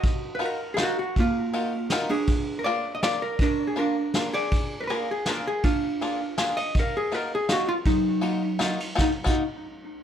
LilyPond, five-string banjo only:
\new Staff \with { instrumentName = "Five-string banjo" } { \time 3/4 \key ees \minor \tempo 4 = 162 r4 <ees' f' ges' bes'>8 r8 <ees' f' ges' bes'>8 r8 | r4 <ees' f' ges' bes'>8 r8 <ees' f' ges' bes'>8 r8 | r4 <bes d' f' bes'>8 r8 <bes d' f' bes'>8 r8 | r4 <bes d' f' bes'>8 r8 <bes d' f' bes'>8 r8 |
r4 <bes d' f' aes'>8 r8 <bes d' f' aes'>8 r8 | r4 <bes d' f' aes'>8 r8 <bes d' f' aes'>8 r8 | r4 <bes ees' f' ges'>8 r8 <bes ees' f' ges'>8 r8 | r4 <bes ees' f' ges'>8 r8 <bes ees' f' ges'>8 r8 |
<bes ees' f' ges'>16 r8 <bes ees' f' ges'>8 r4. r16 | }